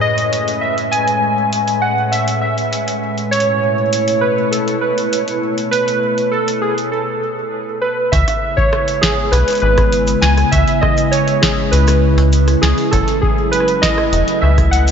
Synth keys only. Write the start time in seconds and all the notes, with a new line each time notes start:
0.01 D#5
0.61 E5
0.91 G#5
1.82 F#5
2.12 E5
2.42 E5
3.31 C#5
4.21 B4
4.51 A4
4.81 B4
5.71 B4
6.31 A4
6.62 G#4
6.92 A4
7.82 B4
8.12 E5
8.57 C#5
9.01 G#4
9.32 B4
9.62 B4
10.21 G#5
10.51 E5
10.81 D#5
11.11 C#5
11.42 G#4
11.71 B4
12.62 G#4
12.91 A4
13.21 G#4
13.52 B4
13.82 D#5
14.42 E5
14.71 F#5